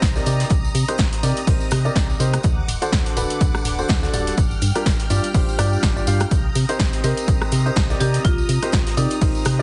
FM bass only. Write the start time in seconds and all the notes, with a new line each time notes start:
0.02 C2
0.26 C3
0.50 C2
0.75 C3
0.99 C2
1.23 C3
1.47 C2
1.72 C3
1.96 C2
2.20 C3
2.44 D2
2.68 D1
2.92 D2
3.17 D1
3.41 D2
3.65 D1
3.89 D2
4.13 D1
4.38 G1
4.62 G2
4.86 G1
5.10 G2
5.34 G1
5.59 G2
5.83 G1
6.07 G2
6.31 C2
6.56 C3
6.80 C2
7.04 C3
7.28 C2
7.52 C3
7.76 C2
8.01 C3
8.25 C2
8.49 C3
8.73 C2
8.97 C3
9.21 C2
9.46 C3